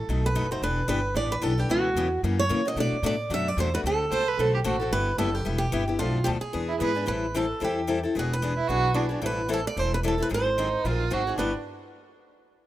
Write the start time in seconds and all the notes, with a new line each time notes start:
Already playing: A4
0.09 B1 B2 F#3 A3 D#4 F#4
0.26 B4
0.35 F#1 B2 F#3 A3 D#4 F#4
0.51 A3 D#4 F#4 C5
0.62 E1 E3 B3 D4 G4 B4
0.88 G1 E3 B3 D4 G4 B4
1.14 A1 E3 B3 D4 G4 D5
1.32 B4
1.42 B1 E3 B3 D4 G4 A4
1.58 B3 D4 G4
1.69 C#2 C#3 E3 B3 C#4 F#4 G4
1.95 E2 C#3 E3 B3 C#4 G4
2.23 F#2 C#3 E3 A#3 C#4 F#4
2.39 C#5
2.49 C#3 E3 A#3 C#4 F#4
2.65 A#3 C#4 F#4 D#5
2.76 B2 F#3 A3 D4 F#4
2.80 D5
2.92 muted upright bass stroke
3.03 A2 B2 F#3 A3 D4 F#4 D5
3.30 F#2 B2 F#3 A3 D4 F#4
3.34 E5
3.48 D5
3.57 E2 B2 F#3 A3 D4 F#4 C5
3.74 A3 D4 F#4 B4
3.84 D2 D3 A3 C4 F#4 A4
4.10 C2 D3 A3 C4 F#4 A4 C5
4.28 B4
4.38 B1 D3 A3 C4 F#4 A4
4.55 G4
4.64 A1 D3 A3 C4 F#4 A4
4.80 C4 F#4 A4
4.91 G1 G3 B3 E4 G4 B4
5.18 F#1 G3 B3 E4 G4 A4
5.34 G4
5.45 E1 G3 B3 E4 G4
5.58 G4
5.72 G1 G3 B3 E4 G4
5.88 B3 E4 G4
5.99 B1 B2 F3 A3 D4 F4 A4
6.24 D2 B2 F3 A3 D4 G4 A4
6.41 G#4, muted upright bass stroke
6.53 E2 E3 B3 D4 G#4
6.68 E4
6.80 G#2 E3 B3 D4 G#4 B4
6.95 B3 D4 G#4
7.06 A1 E3 G3 C4 E4 A4 B4
7.34 E3 G3 C4 E4 A4
7.60 E2 E3 G3 C4 E4 A4
7.64 G4
7.87 E3 G3 C4 E4 A4
8.03 C4 E4 A4
8.15 E1 E3 B3 D4 G#4
8.19 F#4
8.33 B4
8.42 E3 B3 D4 G#4
8.57 E4
8.68 B1 E3 B3 D4 F#4 G#4
8.94 E3 B3 D4 G#4
9.09 B3 D4 G#4
9.21 A1 E3 G3 C4 E4 A4
9.26 B4
9.49 E3 G3 C4 E4 A4
9.54 A4
9.67 D5
9.76 E1 E3 G3 C4 E4 A4 C5
9.94 B4
10.03 E3 G3 C4 E4 A4
10.08 A4
10.18 C4 E4 A4
10.22 B4
10.29 G#1 D#3 F#3 C4 D#4 G#4
10.34 C5
10.57 D#3 F#3 C4 D#4 G#4
10.84 A#1 D#3 F#3 C4 D#4 F4 G#4 A#4
11.11 G#1 D#3 F#3 C4 D#4 F#4 G#4
11.27 C4 D#4 G#4
11.37 G1 G3 B3 D4 E4 G4 B4